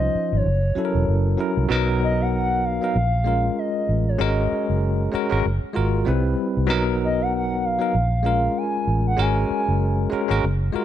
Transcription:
Already playing: tine electric piano F3 C#4 D#4 C5, soft synth lead D#5
0.15 muted fingered electric bass stroke
0.33 fingered electric bass G#1, soft synth lead C#5
0.46 fingered electric bass F#1
0.75 tine electric piano F#3 C#4 E4 A4
0.85 tine electric piano A#4
0.95 fingered electric bass E1
1.08 fingered electric bass F#1
1.37 tine electric piano F#3 C#4 E4 A#4
1.57 fingered electric bass C2
1.69 fingered electric bass B1, tine electric piano F#3 B3 D#4 A#4
2.03 soft synth lead D#5
2.21 soft synth lead F#5
2.34 soft synth lead F#5
2.65 soft synth lead F5
2.81 tine electric piano F#3 B3 D#4 A#4
2.96 fingered electric bass A#1
3.24 tine electric piano G#3 C#4 F4 A#4
3.59 soft synth lead D#5
3.89 fingered electric bass A1
4.09 soft synth lead C#5
4.19 fingered electric bass G#1, tine electric piano G#3 C#4 F#4 A#4, soft synth lead D#5
4.52 muted fingered electric bass stroke
4.70 fingered electric bass F#1
5.12 tine electric piano G#3 C#4 F#4 A#4, muted fingered electric bass stroke
5.30 fingered electric bass G#1, tine electric piano G#3 C#4 F#4 A#4
5.46 fingered electric bass F#1
5.73 fingered electric bass G#1, tine electric piano G#3 F4 F#4 A#4
6.05 fingered electric bass C2, tine electric piano G3 C4 E4 B4
6.57 fingered electric bass C2
6.67 fingered electric bass B1, tine electric piano F#3 B3 D#4 A#4
7.05 soft synth lead D#5
7.22 soft synth lead F#5
7.35 soft synth lead F#5
7.65 soft synth lead F5
7.78 tine electric piano F#3 B3 D#4 A#4
7.95 fingered electric bass A#1
8.23 tine electric piano G#3 C#4 F4 A#4
8.58 soft synth lead G#5
8.87 fingered electric bass A1
9.07 soft synth lead F#5
9.17 fingered electric bass G#1, tine electric piano G#3 C#4 F#4 A#4
9.21 soft synth lead G#5
9.50 muted fingered electric bass stroke
9.68 fingered electric bass F#1
10.10 tine electric piano G#3 C#4 F#4 A#4, muted fingered electric bass stroke
10.28 fingered electric bass G#1, tine electric piano G#3 C#4 F#4 A#4
10.44 fingered electric bass F#1
10.72 tine electric piano G#3 F4 F#4 A#4

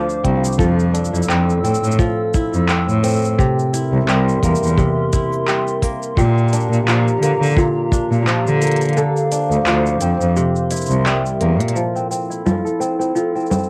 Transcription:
Already playing: kora D3 F3 C4 D4 A4, ambient pad C5 F5 D6
0.10 shaker
0.24 cello C2, kora C4, kick, closed hi-hat
0.45 shaker
0.53 shaker
0.58 cello F2, kora F3 A4, ambient pad A4 E6, kick, shaker
0.80 shaker
0.94 kora D4, closed hi-hat, shaker
1.05 shaker
1.13 cello F2, kora E4, shaker
1.23 shaker
1.29 cello F2, kora C4, clap, shaker
1.50 shaker
1.64 cello A2, kora C4, closed hi-hat, shaker
1.74 shaker
1.84 cello A2, shaker
1.91 shaker
1.99 kora F3, kick, shaker
2.34 kora E4, kick, shaker
2.54 cello F2, shaker
2.69 kora C4, clap, shaker
2.88 cello A2, shaker
3.03 kora C4, closed hi-hat, shaker
3.07 shaker
3.10 shaker
3.13 shaker
3.16 shaker
3.19 shaker
3.22 shaker
3.25 shaker
3.38 kora C3 G4, ambient pad A#4 E5 C6, kick, shaker
3.59 shaker
3.73 kora E4, closed hi-hat, shaker
3.92 cello C2
4.07 cello C2, kora G3, clap, shaker
4.29 shaker
4.43 cello E2, kora A#3, kick, closed hi-hat, shaker
4.56 shaker
4.63 cello E2, shaker
4.67 shaker
4.78 kora C3, kick, shaker
5.13 kora E4, kick, closed hi-hat, shaker
5.33 shaker
5.48 kora G3, clap, shaker
5.68 shaker
5.82 kora A#3, kick, closed hi-hat, shaker
6.03 shaker
6.17 cello A#2, kora A#2 G4, ambient pad G4 F5 A#5, kick, shaker
6.38 shaker
6.48 shaker
6.53 kora D4, closed hi-hat, shaker
6.60 shaker
6.71 cello A#2, shaker
6.87 cello A#2, kora F3, clap, shaker
7.08 shaker
7.21 cello D3, kora A#3, closed hi-hat, shaker
7.40 cello D3, shaker
7.46 shaker
7.47 shaker
7.50 shaker
7.52 shaker
7.54 shaker
7.56 kora A#2, kick, shaker
7.58 shaker
7.92 kora D4, kick, shaker
8.11 cello A#2, shaker
8.27 kora F3, clap, shaker
8.45 cello D3, shaker
8.62 kora A#3, closed hi-hat, shaker
8.67 closed hi-hat
8.72 closed hi-hat
8.76 closed hi-hat
8.81 closed hi-hat, shaker
8.86 closed hi-hat
8.89 closed hi-hat
8.93 kora D3, ambient pad C5 D6, closed hi-hat
8.97 kora A4, shaker
9.17 shaker
9.32 kora D4, closed hi-hat, shaker
9.51 cello D2, shaker
9.66 cello D2, kora F3, clap, shaker
9.86 shaker
10.01 cello F2, kora C4, closed hi-hat, shaker
10.20 cello F2, shaker
10.35 kora C3, ambient pad A#4 E5 C6, shaker
10.56 shaker
10.71 kora E4, closed hi-hat, shaker
10.76 shaker
10.81 shaker
10.86 shaker
10.90 cello C2, shaker
11.06 kora G3, clap, shaker
11.26 shaker
11.41 cello E2, kora A#3, closed hi-hat
11.60 cello A#2, closed hi-hat
11.68 closed hi-hat
11.76 kora F3, ambient pad E4 A4, shaker
11.96 kora C4, shaker
12.11 kora C4, shaker
12.30 kora E4, shaker
12.46 kora F3, low conga, shaker
12.65 kora A4, shaker
12.80 kora C4, shaker
12.99 kora C4, shaker
13.15 kora F3, shaker
13.35 kora C4, shaker
13.40 shaker
13.46 shaker
13.50 kora C4, low conga, shaker
13.58 shaker
13.63 shaker

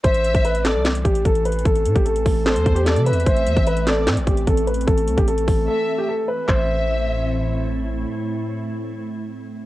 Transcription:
0.04 808-style bass A1, ambient pad E3 A3 C4, grand piano C5, violin section E5, kick, closed hi-hat
0.14 closed hi-hat
0.24 closed hi-hat
0.34 808-style bass A1, kick, closed hi-hat
0.45 grand piano B4, closed hi-hat
0.55 closed hi-hat
0.64 grand piano A4, violin section D5, snare, clap, closed hi-hat
0.75 808-style bass C2
0.85 snare, clap, closed hi-hat
0.95 closed hi-hat
1.05 808-style bass A1, grand piano G4, kick, closed hi-hat
1.15 closed hi-hat
1.25 808-style bass A1, grand piano A4, kick, closed hi-hat
1.35 closed hi-hat
1.45 grand piano B4, closed hi-hat
1.52 closed hi-hat
1.59 closed hi-hat
1.65 808-style bass A1, grand piano A4, kick, closed hi-hat
1.75 closed hi-hat
1.85 808-style bass A2, closed hi-hat
1.95 808-style bass A1, grand piano G4, kick, closed hi-hat
2.05 grand piano A4, closed hi-hat
2.16 closed hi-hat
2.26 808-style bass A1, kick, open hi-hat
2.46 grand piano A4, violin section C5, snare, clap, closed hi-hat
2.56 808-style bass E2, closed hi-hat
2.66 808-style bass E2, kick, closed hi-hat
2.75 grand piano G4, closed hi-hat
2.86 grand piano A4, violin section D5, snare, clap, closed hi-hat
2.96 808-style bass C3, closed hi-hat
3.06 grand piano B4, violin section E5, closed hi-hat
3.11 808-style bass E2, closed hi-hat
3.20 closed hi-hat
3.26 808-style bass A1, ambient pad A3, grand piano C5, violin section E5, kick, closed hi-hat
3.36 closed hi-hat
3.46 808-style bass E2, closed hi-hat
3.57 808-style bass A1, kick, closed hi-hat
3.67 grand piano B4, closed hi-hat
3.77 closed hi-hat
3.87 grand piano A4, violin section D5, snare, clap, closed hi-hat
4.07 808-style bass A2, snare, clap, closed hi-hat
4.17 808-style bass A1, closed hi-hat
4.27 808-style bass A1, grand piano G4, kick, closed hi-hat
4.37 closed hi-hat
4.47 808-style bass A1, grand piano A4, kick, closed hi-hat
4.57 closed hi-hat
4.67 grand piano B4, closed hi-hat
4.74 closed hi-hat
4.81 closed hi-hat
4.87 808-style bass A1, grand piano A4, kick, closed hi-hat
4.98 closed hi-hat
5.08 808-style bass C2, closed hi-hat
5.17 808-style bass A1, grand piano G4, kick, closed hi-hat
5.28 grand piano A4, closed hi-hat
5.38 closed hi-hat
5.48 808-style bass A1, kick, open hi-hat
5.68 grand piano A4, violin section E5
5.98 grand piano G4
6.09 grand piano A4
6.28 grand piano B4
6.48 808-style bass A1, ambient pad A2 A3 C4 E4, grand piano C5, violin section E5, kick, clap

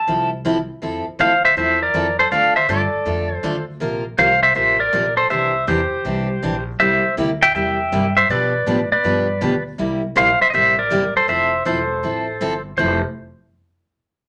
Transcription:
Already playing: pedal steel guitar A5
0.07 upright bass C2, steel-string acoustic guitar F3 C4 E4 A4
0.45 steel-string acoustic guitar F3 C4 E4 A4
0.82 upright bass F2, steel-string acoustic guitar F3 C4 E4 A4
1.06 muted upright bass stroke
1.19 upright bass D2, steel-string acoustic guitar F3 C4 E4 A4, pedal steel guitar C5 F5
1.45 pedal steel guitar C5 E5
1.56 upright bass E2, steel-string acoustic guitar F3 C4 E4 A4, pedal steel guitar C5 E5
1.82 pedal steel guitar A#4 D5
1.93 upright bass F2, steel-string acoustic guitar F3 C4 E4 A4
2.19 pedal steel guitar A4 C5
2.31 upright bass D2, steel-string acoustic guitar D3 A3 D4 F4 A4, pedal steel guitar D5 F5
2.56 pedal steel guitar C5 E5
2.69 upright bass G2, steel-string acoustic guitar D3 A3 D4 F4 A4, pedal steel guitar A4 D5
2.93 muted upright bass stroke
3.05 upright bass F2, steel-string acoustic guitar D3 A3 D4 F4 A4
3.36 pedal steel guitar C5
3.43 upright bass D2, steel-string acoustic guitar D3 A3 D4 F4 A4
3.80 upright bass A#1, steel-string acoustic guitar C3 F3 A#3 F4 A#4
4.18 upright bass C2, steel-string acoustic guitar C3 F3 A#3 F4 A#4, pedal steel guitar C5 F5
4.43 pedal steel guitar C5 E5
4.55 upright bass A1, steel-string acoustic guitar C3 F3 A#3 F4 A#4, pedal steel guitar C5 E5
4.80 pedal steel guitar A#4 D5
4.93 upright bass A#1, steel-string acoustic guitar C3 F3 A#3 F4 A#4
5.17 pedal steel guitar A4 C5
5.30 upright bass C2, steel-string acoustic guitar C3 E3 D4 G4, pedal steel guitar C5 E5
5.67 upright bass E2, steel-string acoustic guitar C3 E3 D4 G4, pedal steel guitar G4 C5
5.92 muted upright bass stroke
6.05 upright bass C2, steel-string acoustic guitar C3 E3 D4 G4
6.43 upright bass A#1, steel-string acoustic guitar C3 E3 D4 G4
6.80 upright bass C2, steel-string acoustic guitar C3 G3 A#3 E4 G4, pedal steel guitar C5 E5
7.04 muted upright bass stroke
7.17 upright bass D2, steel-string acoustic guitar C3 G3 A#3 E4 G4
7.43 pedal steel guitar E5 G5
7.55 upright bass E2, steel-string acoustic guitar C3 G3 A#3 E4 G4, pedal steel guitar E5 G5
7.92 upright bass G2, steel-string acoustic guitar C3 G3 A#3 E4 G4
8.17 pedal steel guitar C5 E5
8.29 upright bass B2, steel-string acoustic guitar B2 F3 B3 D4 G4 B4, pedal steel guitar B4 D5
8.66 upright bass A2, steel-string acoustic guitar B2 F3 B3 D4 G4 B4
8.91 pedal steel guitar B4 D5, muted upright bass stroke
9.04 upright bass G2, steel-string acoustic guitar B2 F3 B3 D4 G4 B4
9.41 upright bass D2, steel-string acoustic guitar B2 F3 B3 D4 G4 B4
9.78 upright bass C2, steel-string acoustic guitar C3 G3 A#3 E4 G4
10.16 upright bass A#1, steel-string acoustic guitar C3 G3 A#3 E4 G4, pedal steel guitar C5 F5
10.41 pedal steel guitar C5 E5, muted upright bass stroke
10.50 upright bass A1, steel-string acoustic guitar C3 G3 A#3, pedal steel guitar C5 D#5
10.54 steel-string acoustic guitar E4 G4, pedal steel guitar E5
10.79 pedal steel guitar A#4 D5
10.90 upright bass G1, steel-string acoustic guitar C3 G3 A#3 E4 G4
11.15 pedal steel guitar A4 C5, muted upright bass stroke
11.28 upright bass F1, steel-string acoustic guitar F3 C4 E4 A4, pedal steel guitar C5 E5
11.65 upright bass E1, steel-string acoustic guitar F3 C4 E4 A4, pedal steel guitar A4 C5
12.03 upright bass A1, steel-string acoustic guitar F3 C4 E4 A4
12.41 upright bass G1, steel-string acoustic guitar F3 C4 E4 A4
12.77 upright bass F1, steel-string acoustic guitar F3 C4 E4 A4, pedal steel guitar C5

